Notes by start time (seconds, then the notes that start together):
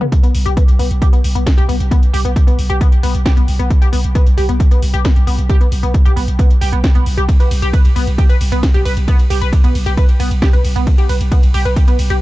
0.01 B3, mid tom
0.12 kick, closed hi-hat
0.23 B3, closed hi-hat
0.35 B1, open hi-hat
0.46 B1 G4, closed hi-hat
0.57 B3, kick, closed hi-hat
0.68 B1, closed hi-hat
0.79 B1 B3, open hi-hat
0.91 B1, closed hi-hat
1.02 G4, kick, closed hi-hat
1.13 B3, closed hi-hat
1.24 B1, open hi-hat
1.35 B1 B3, closed hi-hat
1.46 kick, snare, closed hi-hat
1.58 B1 G4, closed hi-hat
1.69 B1 B3, open hi-hat
1.80 B1, closed hi-hat
1.91 B3, kick, closed hi-hat
2.03 closed hi-hat
2.14 B1 G4, open hi-hat
2.25 B1 B3, closed hi-hat
2.36 kick, closed hi-hat
2.47 B1 B3, closed hi-hat
2.58 B1, open hi-hat
2.70 B1 G4, closed hi-hat
2.81 B3, kick, closed hi-hat
2.92 closed hi-hat
3.03 B1 B3, open hi-hat
3.15 B1, closed hi-hat
3.25 G4, kick, snare, closed hi-hat
3.37 B1 B3, closed hi-hat
3.48 B1, open hi-hat
3.59 B1 B3, closed hi-hat
3.70 kick, closed hi-hat
3.82 G4, closed hi-hat
3.93 B1 B3, open hi-hat
4.04 B1, closed hi-hat
4.15 B3, kick, closed hi-hat
4.27 B1, closed hi-hat
4.37 B1 G4, open hi-hat
4.49 B1 B3, closed hi-hat
4.60 kick, closed hi-hat
4.71 B3, closed hi-hat
4.82 B1, open hi-hat
4.94 B1 G4, closed hi-hat
5.05 B3, kick, snare, closed hi-hat
5.16 B1, closed hi-hat
5.27 B1 B3, open hi-hat
5.38 B1, closed hi-hat
5.50 G4, kick, closed hi-hat
5.61 B3, closed hi-hat
5.72 B1, open hi-hat
5.83 B1 B3, closed hi-hat
5.94 kick, closed hi-hat
6.05 B1 G4, closed hi-hat
6.16 B1 B3, open hi-hat
6.28 B1, closed hi-hat
6.39 B3, kick, closed hi-hat
6.50 closed hi-hat
6.61 B1 G4, open hi-hat
6.72 B1 B3, closed hi-hat
6.84 kick, snare, closed hi-hat
6.95 B1 B3, closed hi-hat
7.06 B1, open hi-hat
7.17 B1 G4, closed hi-hat
7.29 kick, closed hi-hat, ride
7.40 B3, closed hi-hat, ride
7.51 B1, open hi-hat, ride
7.62 B1 G4, closed hi-hat, ride
7.73 B4, kick, closed hi-hat, ride
7.85 B1, closed hi-hat, ride
7.96 B1 B3, open hi-hat, ride
8.07 B1, closed hi-hat, ride
8.18 G4, kick, closed hi-hat, ride
8.29 B4, closed hi-hat, ride
8.41 B1, open hi-hat, ride
8.52 B1 B3, closed hi-hat, ride
8.63 kick, snare, closed hi-hat, ride
8.74 B1 G4, closed hi-hat, ride
8.85 B1 B4, open hi-hat, ride
8.97 B1, closed hi-hat, ride
9.08 B3, kick, closed hi-hat, ride
9.19 closed hi-hat, ride
9.30 B1 G4, open hi-hat, ride
9.41 B1 B4, closed hi-hat, ride
9.53 kick, closed hi-hat, ride
9.64 B1 B3, closed hi-hat, ride
9.75 B1, open hi-hat, ride
9.86 B1 G4, closed hi-hat, ride
9.97 B4, kick, closed hi-hat, ride
10.09 closed hi-hat, ride
10.20 B1 B3, open hi-hat, ride
10.31 B1, closed hi-hat, ride
10.42 G4, kick, snare, closed hi-hat, ride
10.53 B1 B4, closed hi-hat, ride
10.64 B1, open hi-hat, ride
10.76 B1 B3, closed hi-hat, ride
10.87 kick, closed hi-hat, ride
10.98 G4, closed hi-hat, ride
11.09 B1 B4, open hi-hat, ride
11.20 B1, closed hi-hat, ride
11.32 B3, kick, closed hi-hat, ride
11.43 B1, closed hi-hat, ride
11.54 B1 G4, open hi-hat, ride
11.65 B1 B4, closed hi-hat, ride
11.76 kick, closed hi-hat, ride
11.88 B3, closed hi-hat, ride
11.99 B1, open hi-hat, ride
12.10 B1 G4, closed hi-hat, ride